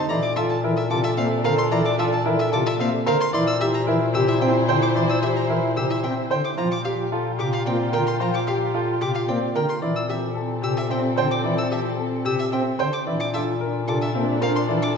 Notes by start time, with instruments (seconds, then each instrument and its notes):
Already playing: grand piano D#4
0.09 bass clarinet A#2, pipe organ E3, violin section D4 A4, grand piano E4 D5, alto flute A4, violin A#5
0.22 violin D6
0.36 grand piano F4 A4, alto flute A4, violin E5
0.50 violin A5
0.64 pipe organ E3, grand piano E4 A#4, alto flute A4
0.77 violin E5
0.90 pipe organ C3, grand piano F4 A4, violin D6
0.94 alto flute A4
1.04 violin E5
1.17 pipe organ A#3, grand piano C4 E5, violin F5
1.22 alto flute A4
1.44 pipe organ D3, grand piano A#4 C5, violin F5
1.51 alto flute A4
1.58 violin C6
1.71 pipe organ E3, grand piano E4 D5, violin A#5
1.78 alto flute A4
1.85 violin D6
1.99 grand piano F4 A4, violin E5
2.07 alto flute A4
2.13 violin A5
2.25 pipe organ E3, grand piano E4 A#4
2.35 alto flute A4
2.39 violin E5
2.52 pipe organ C3, grand piano F4 A4, violin D6
2.64 alto flute A4, violin E5
2.79 pipe organ A#3, grand piano C4 E5, violin F5
2.91 alto flute A4
3.06 pipe organ D3, grand piano A#4 C5, violin F5
3.21 violin C6
3.33 bass clarinet A#2, pipe organ E3, violin section E4 C5, alto flute E4, grand piano E4 D5, violin C6
3.47 violin E6
3.60 alto flute E4, grand piano G4, violin E5
3.74 violin A#5
3.87 pipe organ E3, grand piano E4 A#4, alto flute E4
4.14 pipe organ C3, grand piano G4, violin E6
4.18 alto flute E4
4.28 violin E5
4.41 pipe organ C4, grand piano C4 E5, violin G5
4.46 alto flute E4
4.68 pipe organ D3, grand piano C5, violin G5
4.74 alto flute E4
4.82 violin D6
4.95 pipe organ E3, grand piano E4 D5, violin C6
5.02 alto flute E4
5.09 violin E6
5.23 grand piano G4, violin E5
5.31 alto flute E4
5.36 violin A#5
5.49 pipe organ E3, grand piano E4 A#4
5.59 alto flute E4
5.76 pipe organ C3, grand piano G4, violin E6
5.87 alto flute E4, violin E5
6.03 pipe organ C4, grand piano C4 E5, violin G5
6.15 alto flute E4
6.31 pipe organ D3, grand piano C5, violin G5
6.44 violin D6
6.57 bass clarinet A#2, pipe organ F3, violin section F4 G4, alto flute F4, grand piano F4 C5, violin A#5
6.71 violin D6
6.85 alto flute F4, grand piano G4, violin F5
7.12 grand piano F4 A4, alto flute F4
7.39 pipe organ C3, alto flute F4, grand piano G4, violin D6
7.53 violin F5
7.65 pipe organ A#3, grand piano C4 D5, violin G5
7.71 alto flute F4
7.93 pipe organ D3, grand piano A#4, violin G5
7.99 alto flute F4
8.07 violin C6
8.20 pipe organ F3, grand piano F4 C5, violin A#5
8.27 alto flute F4
8.34 violin D6
8.47 grand piano G4, violin F5
8.55 alto flute F4
8.74 grand piano F4 A4
8.84 alto flute F4
9.01 pipe organ C3, grand piano G4, violin D6
9.12 alto flute F4, violin F5
9.28 pipe organ A#3, grand piano C4 D5, violin G5
9.40 alto flute F4
9.55 pipe organ D3, grand piano A#4, violin G5
9.69 violin C6
9.81 bass clarinet A#2, pipe organ E3, violin section C4 A4, alto flute C4, grand piano E4 D5
9.96 violin E6
10.09 alto flute C4, grand piano G4, violin E5
10.35 alto flute C4, grand piano A4
10.62 pipe organ C3, grand piano G4, violin E6
10.67 alto flute C4
10.77 violin E5
10.89 pipe organ C4, grand piano C4 E5, violin G5
10.95 alto flute C4
11.16 pipe organ D3, grand piano C5, violin G5
11.23 alto flute C4
11.31 violin D6
11.44 pipe organ E3, grand piano E4 D5
11.51 alto flute C4
11.58 violin E6
11.71 grand piano G4, violin E5
11.81 alto flute C4
11.98 grand piano A4
12.09 alto flute C4
12.25 pipe organ C3, grand piano G4, violin E6
12.37 alto flute C4, violin E5
12.52 pipe organ C4, grand piano C4 E5, violin G5
12.66 alto flute C4
12.79 pipe organ D3, grand piano C5, violin G5
12.93 violin D6
13.06 bass clarinet A#2, pipe organ E3, alto flute D4, violin section D4 A4, grand piano E4 D5
13.20 violin D6
13.34 alto flute D4, grand piano F4 A4, violin E5
13.61 alto flute D4, grand piano A#4
13.87 pipe organ C3, alto flute D4, grand piano F4 A4, violin D6
14.01 violin E5
14.15 pipe organ A#3, grand piano C4 E5
14.19 alto flute D4
14.41 grand piano A#4 C5, violin F5
14.48 alto flute D4
14.56 violin C6
14.68 pipe organ E3, grand piano E4 D5
14.76 alto flute D4
14.83 violin D6